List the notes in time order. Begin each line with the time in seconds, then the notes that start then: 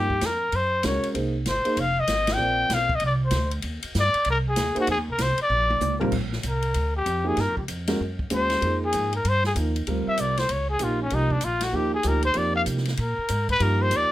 Already playing: G2 G4
0.10 kick
0.21 F2, snare, hi-hat pedal, ride
0.26 A#4
0.52 F#2 C5, ride
0.83 C#2 G#3 C#4 F#4 A#4 C#5, snare, hi-hat pedal, ride
1.03 muted upright bass stroke, ride
1.14 C2 A#3 D#4 G#4 C5, ride
1.46 G#1 C5, snare, hi-hat pedal, ride
1.65 A#3 D#4 G#4 C5, muted upright bass stroke, ride
1.77 F1 F5, ride
2.00 D#5
2.07 G#1, snare, hi-hat pedal, ride
2.27 snare, ride
2.33 G5
2.37 A#1 C4 F4 A#4 D5
2.70 B1, snare, hi-hat pedal, ride
2.74 F5
2.89 kick
2.95 D#5
3.00 C2, ride
3.06 D5
3.26 C5
3.31 D2, snare, hi-hat pedal, ride
3.51 ride
3.62 D#2, ride
3.82 muted upright bass stroke, ride
3.94 G2, snare, hi-hat pedal
3.99 D5
4.14 muted upright bass stroke, ride
4.25 C2, ride
4.30 A#4
4.49 G#4
4.56 D#2, snare, hi-hat pedal, ride
4.75 A#3 D#4 G#4 C5, muted upright bass stroke, ride
4.80 F#4
4.87 F2 G#4, ride
4.98 D#2
5.08 C2 A#4
5.18 C2 C5, snare, hi-hat pedal, ride
5.38 muted upright bass stroke, ride
5.42 D5
5.50 A#1
5.70 high tom
5.80 C#2, hi-hat pedal, high tom
5.99 D#2 G3 C4 F4 A#4, floor tom
6.12 A#1, kick, crash
6.32 snare
6.43 C2, hi-hat pedal, ride
6.48 A#4
6.62 ride
6.74 D2, ride
6.96 G4
7.06 F2, hi-hat pedal, ride
7.24 F3 A#3 D#4 G4 G#4
7.37 G2 A#4, snare, ride
7.48 F2
7.57 C#2 G4, kick
7.68 F2, hi-hat pedal, ride
7.87 G#3 C#4 F#4 A#4, snare, ride
8.00 F#2
8.19 kick
8.30 D#2 G#3 C#4 F#4 C5, hi-hat pedal, ride
8.34 C5
8.50 snare, ride
8.61 F2 F3 A#3 D#4 G#4, ride
8.85 G#4
8.93 G#2, hi-hat pedal, ride
9.13 A#4, ride
9.25 G2 C5, ride
9.44 G#4, snare
9.55 D#2 F3 A#3 D#4 A#4, hi-hat pedal, ride
9.76 ride
9.87 D2 G3 C4 F4 A#4, ride
10.07 E5, muted upright bass stroke
10.17 C2 D5, hi-hat pedal, ride
10.37 C5, snare, ride
10.49 C#2 C#5, ride
10.70 G#4
10.79 A#1 F3 A#3 D#4 G4, hi-hat pedal, ride
10.83 F4
11.02 C#4
11.10 C2 F3 A#3 D#4 G4, ride
11.14 D#4
11.30 D4, kick
11.41 A#1 F4, hi-hat pedal, ride
11.61 F#4, snare, ride
11.73 D#2 F3 A#3 D#4 G4
11.94 G#4
12.03 D2 F3 A#3 D#4 G4, hi-hat pedal, ride
12.08 A#4
12.22 C5, ride
12.34 F2 F3 A#3 D#4 G4 D5, ride
12.55 F5
12.66 C3, hi-hat pedal, ride
12.77 snare
12.85 snare, ride
12.97 A#2 A#4, ride
13.19 muted upright bass stroke
13.28 G#2, hi-hat pedal, ride
13.49 B4, kick, ride
13.60 G2 F3 A#3 D#4 G4 A#4, ride
13.82 C5
13.91 D#2, hi-hat pedal, ride
13.96 D5